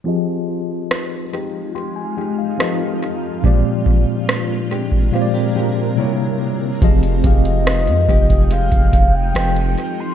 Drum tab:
HH |----------------|----------------|xxxxxx-xxxx-xxx-|
SD |----r-------r---|----r-----------|----r-------r---|
BD |----------------|o-o----o--------|o-o---oo-oo-----|